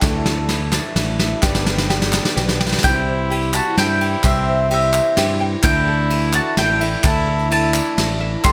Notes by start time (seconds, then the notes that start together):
Already playing: D3 A3
0.00 D2 D3 E3 A3 D4 E4 A4, kick, snare, clap, ride, tambourine
0.04 D5
0.25 A4, snare
0.49 A3 D4 E4 A4, snare, ride
0.72 D5, snare, clap, tambourine
0.96 A1 A3 D4 E4 A4, snare, ride
1.19 D4 E4 A4 E5, snare
1.41 G1 G2 D3 G3 B3 D4 G4 B4, kick, snare, clap, tambourine
1.45 D5
1.54 snare, tambourine
1.66 B4, snare, clap
1.78 snare, clap
1.89 G3 B3 D4 G4 B4, snare, clap, tambourine
2.01 snare, clap
2.12 G3 B3 D4 B4 D5, snare, clap, tambourine
2.25 snare
2.36 B1 G3 B3 D4 G4 B4, snare, tambourine
2.48 snare, clap
2.60 G5, snare
2.66 snare
2.72 snare, tambourine
2.78 G3, snare
2.83 C2 C3 E3 G3 C4 E4 G4 C5 E5 G5, kick, clap, ride, tambourine
3.08 C5
3.30 G3 C4 E4 G4 C5, ride
3.42 tambourine
3.53 C4 E4 F#4 C5 E5 A5, clap, tambourine
3.75 G2 G3 C4 E4 G4 C5 G5, snare, ride
4.01 G5, ride
4.23 C2 C3 G3 C4 E4 G4 C5 E5, kick, clap, ride, tambourine
4.47 C5
4.69 G3 C4 E4 G4 C5, ride
4.74 E5
4.82 tambourine
4.93 E5, clap, tambourine
5.16 G2 G3 C4 E4 G4 C5, snare, ride
5.40 C4 E4 C5 G5
5.62 D2 D3 E3 A3 D4 E4 A4 D5 E5 G5, kick, clap, ride, tambourine
5.87 A4
6.10 A3 D4 E4 A4, ride
6.22 tambourine
6.33 F#4 D5 A5, clap, tambourine
6.57 A1 A3 D4 E4 A4 G5, snare, ride
6.80 D4 E4 A4 E5, ride
7.03 D2 D3 A3 D4 E4 A4 A5, kick, clap, ride, tambourine
7.27 A4
7.39 tambourine
7.50 A3 D4 E4 A4 A5, ride, tambourine
7.62 clap
7.74 D5, clap, tambourine
7.86 clap
7.97 A1 A3 D4 E4 A4, snare, ride
8.09 tambourine
8.20 D4 E4 A4 E5
8.43 G1 G2 D3 G3 A3 D4 G4 A4 D5 C6, kick, clap, ride, tambourine